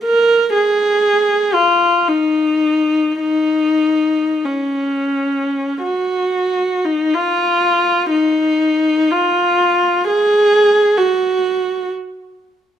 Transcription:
0.05 A#4
0.54 G#4
1.54 F4
2.08 D#4
3.20 D#4
4.44 C#4
5.82 F#4
6.85 D#4
7.14 F4
8.10 D#4
9.11 F4
10.08 G#4
10.98 F#4

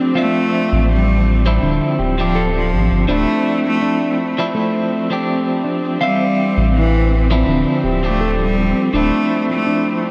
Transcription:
Already playing: F3 C4 D4 G4
0.15 F3 A3 C4 D4 F4 E5
0.72 A1
0.91 G3
1.46 F3 C4 D4 E4
1.62 D1 D3
1.99 D1 G4
2.18 F3 C4 D4 G4
2.35 A4
2.57 F3
2.72 A1
2.91 G1
3.08 D1 F3 A3 C4 D4 E4
3.66 A3
3.81 D4
4.38 F3 C4 D4 E4
4.55 A3
5.10 F3 C4 D4 G4
5.64 D4
6.01 E3 G3 C4 D4 E5 F5
6.57 A1
6.76 E3
7.31 F3 C4 D4 E4
7.47 D1 D3
7.84 D1 G4
8.03 F3 A3 C4 D4 G4
8.21 A4
8.42 G3
8.93 D1 F3 A3 C4 D4 E4
9.52 A3
9.67 D4

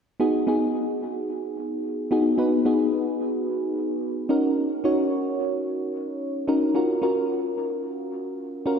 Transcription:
0.20 B3 D#4 F#4 G#4
0.47 B3 D#4 F#4 G#4
2.11 B3 D#4 F#4 G#4
2.38 B3 D#4 F#4 B4
2.65 B3 D#4 F#4 G#4
4.29 C#4 D#4 F#4 A#4
4.84 C#4 D#4 F#4 C#5
6.48 C#4 D#4 F#4 A#4
6.75 C#4 F4 F#4 A#4
7.02 C#4 F4 F#4 A#4
8.66 C#4 F4 F#4 A#4

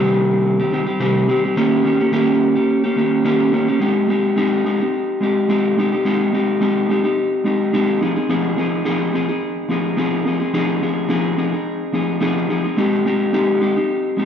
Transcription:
Already playing: C3 D#3 G3 C4 G4
0.60 G3 C4 G4
0.72 D#3 G3 C4 G4
0.86 G3 C4 G4
1.00 C3 D#3 G3 C4 G4
1.27 D#3 G3 C4 G4
1.44 G3 C4 G4
1.56 D#3 A#3 C#4 G4
1.84 D#3 A#3 C#4 G4
2.00 A#3 C#4 G4
2.12 D#3 A#3 C#4 G4
2.55 A#3 C#4 G4
2.84 A#3 C#4 G4
2.96 D#3 A#3 C#4 G4
3.25 D#3 A#3 C#4 G4
3.52 D#3 A#3 C#4 G4
3.68 A#3 C#4 G4
3.80 G#3 C4 D#4 G4
4.08 G#3 C4 D#4 G4
4.36 G#3 C4 D#4 G4
4.65 G#3 C4 D#4 G4
4.80 C4 D#4 G4
5.21 G#3 C4 D#4 G4
5.49 G#3 C4 D#4 G4
5.77 G#3 C4 D#4 G4
5.92 C4 D#4 G4
6.05 G#3 C4 D#4 G4
6.33 G#3 C4 D#4 G4
6.61 G#3 C4 D#4 G4
6.89 G#3 C4 D#4 G4
7.04 C4 D#4 G4
7.44 G#3 C4 D#4 G4
7.73 G#3 C4 D#4 G4
8.01 F3 C4 D#4 G#4
8.16 C4 D#4 G#4
8.29 F3 C4 D#4 G#4
8.57 F3 C4 D#4 G#4
8.85 F3 C4 D#4 G#4
9.13 F3 C4 D#4 G#4
9.29 C4 D#4 G#4
9.69 F3 C4 D#4 G#4
9.97 F3 C4 D#4 G#4
10.25 F3 C4 D#4 G#4
10.40 C4 D#4 G#4
10.53 F3 C4 D#4 G#4
10.82 F3 C4 D#4 G#4
11.09 F3 C4 D#4 G#4
11.37 F3 C4 D#4 G#4
11.52 C4 D#4 G#4
11.93 F3 C4 D#4 G#4
12.21 F3 C4 D#4 G#4
12.49 F3 C4 D#4 G#4
12.64 C4 D#4 G#4
12.77 G#3 C4 D#4 G4
13.05 G#3 C4 D#4 G4
13.33 G#3 C4 D#4 G4
13.60 G#3 C4 D#4 G4
13.76 C4 D#4 G4
14.17 G#3 C4 D#4 G4

